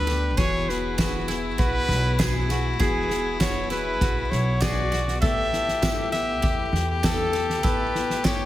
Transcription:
Already playing: D2 G3 D4 A4 B4
0.07 B3 D4 G4 A4, snare
0.37 E1 E3 B3 E4 F#4 G#4 C#5, kick, snare
0.68 B3 F#4 G#4 B4, snare
0.98 E3 B3 F#4 G#4, kick, snare, clap, tambourine
1.28 B3 E4 F#4 G#4, snare
1.58 B1 F#4 B4, kick, snare
1.88 B1, snare
2.18 E3 B3 F#4 G#4, kick, snare, clap, tambourine
2.49 B3 F#4 G#4, snare
2.79 E1 E3 B3 F#4 G#4, kick, snare
3.09 B3 F#4 G#4, snare
3.40 E3 B3 F#4 G#4 C#5, kick, snare, clap, tambourine
3.70 B3 E4 F#4 G#4 B4, snare
4.01 B1 F#4, kick, snare
4.30 B1 C#5, snare
4.61 E3 B3 F#4 G#4 D5, kick, snare, clap, tambourine
4.92 B3 F#4 G#4, snare
5.08 snare
5.21 A1 A3 B3 E4 G4 A4 E5, kick, snare
5.52 B3 E4 A4, snare
5.68 snare
5.81 A3 B3 E4 G4 A4, kick, snare, clap, tambourine
6.12 B3 E4 A4 E5 F#5, snare
6.42 E2 G4, kick, snare
6.73 E2, snare
7.03 A3 B3 E4 A4, kick, snare, clap, tambourine
7.32 B3 E4 G4 A4, snare
7.49 snare
7.63 A1 A3 B3 E4 A4 B4, kick, snare
7.94 B3 E4 A4, snare
8.10 snare
8.23 A3 B3 E4 G4 A4 C#5, kick, snare, clap, tambourine

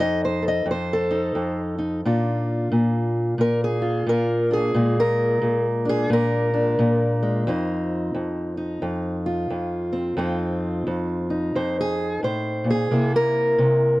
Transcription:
Already playing: D#4 A4
0.00 F2 D#5
0.25 C5
0.42 A4
0.48 D#5
0.66 F2
0.71 C5
0.93 A4
1.11 D#4
1.35 F2
1.78 D#4
2.05 A#2 D4 F4
2.72 A#2
3.38 A#2 A#4
3.64 G#4
3.82 F4
4.07 A#2 A#4
4.51 D4 G#4
4.74 A#2 G#3
5.00 A#4
5.42 A#2
5.85 D4
5.89 G#4
6.10 A#2 A#4
6.54 D4
6.79 A#2
7.23 G#3
7.47 F2 C4 D#4
8.14 F2
8.57 D#4
8.82 F2
9.26 F4
9.50 F2
9.93 C4
10.17 F2 C4 D#4 F4
10.87 F2
11.30 D#4
11.55 F2 C5
11.81 G#4
12.23 A2 C5
12.64 A#2
12.70 G#4
12.91 C3 A#3 E4
13.16 A#4
13.58 C3

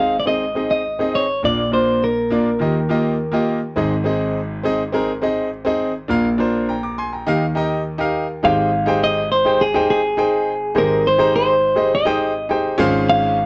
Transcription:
Already playing: G#1 G#2 C4 D#4 F5
0.00 G#4 D#5
0.20 D5
0.26 C4 D#4 G#4 D#5
0.55 C4 D#4 G#4 D#5
0.71 D#5
0.99 C4 D#4 G#4 D#5
1.15 C#5
1.43 A#1 A#2 A#3 D4 F4 D5
1.72 A#3 D4 F4 C5 D5
2.04 A#4
2.30 A#3 D4 F4 D5
2.59 D#2 D#3 A#3 F4 G4 D#5
2.89 A#3 F4 G4 D#5
3.32 A#3 F4 G4 D#5
3.76 G#1 G#2 C4 D#4 G#4 D#5
4.04 C4 D#4 G#4 D#5
4.63 C4 D#4 G#4 D#5
4.92 C4 D#4 G#4 A#4
5.22 C4 D#4 G#4 D#5
5.65 C4 D#4 G#4 D#5
6.08 A#1 A#2 D4 F4 A#4 F5
6.38 D4 F4 A#4 C5
6.69 G5 A#5
6.83 A#5 D6
6.98 G#5 C6
7.13 G5 A#5
7.27 D#2 D#3 D#4 G4 A#4 F5
7.55 D#4 G4 A#4 D#5
7.98 D#4 G4 A#4 F5
8.43 G#1 G#2 D#4 G4 G#4 C5 F5 G5
8.86 D#4 G4 G#4 C5 G5
9.04 D#5
9.32 C5
9.45 D#4 G4 G#4 C5 G5
9.61 G#4
9.74 D#4 G4 G#4 C5 G5
9.90 G#4
10.17 D#4 G#4 C5 G5
10.75 G#1 G#2 D#4 G4 G#4 A#4 C5 D#5
11.07 C5
11.18 D#4 G4 G#4 C5 A#5
11.36 C5
11.75 D#4 G4 G#4 C5 D#5
11.95 D#5
12.05 D#4 G4 G#4 C5 G5
12.49 D#4 G4 G#4 C5 G5
12.78 G#1 G#2 C#4 F4 G#4 C5 F5
13.10 F5

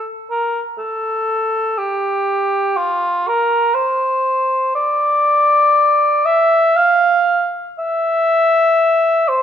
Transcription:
Already playing: A4
0.30 A#4
0.78 A4
1.78 G4
2.77 F4
3.27 A#4
3.74 C5
4.75 D5
6.25 E5
6.76 F5
7.78 E5
9.28 C5

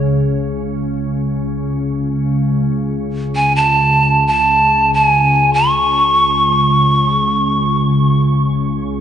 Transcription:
Already playing: C#2 C#3
2.40 C#2 C#3
3.36 G#5
3.56 A5
4.27 A5
4.94 G#5
5.54 C#6

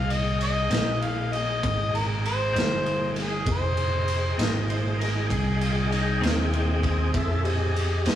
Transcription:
Already playing: C2 G#4 D#5 F5 G5
0.10 D#5, ride
0.41 D#5, ride
0.70 A#1 F2 D#3 G#3 C4, snare, ride
1.02 F5, ride
1.33 D#5, ride
1.63 G#1, kick, ride
1.95 A#4, ride
2.25 C5, ride
2.53 G1 F2 D#3 G#3 C4, ride
2.58 snare
2.86 ride
3.16 snare, ride
3.20 G#4
3.46 F1 G#4 D#5 G5, kick, ride
3.51 C5
3.77 ride
4.08 ride
4.38 G#1 F2 D#3 G#3 C4 D#5, snare, ride
4.70 C5, ride
4.99 A#4, ride
5.03 snare
5.30 C2 G#4, kick, ride
5.61 F4, ride
5.92 D#4, ride
6.21 D#2 F2 D#3 G#3 C4, ride
6.25 snare
6.53 C4, ride
6.83 kick, ride
7.13 F2 G#4 A4 E5, kick, ride
7.44 G4 G#4 D#5, ride
7.76 ride
8.06 F2 G2 D#3 G#3 C4, snare, ride

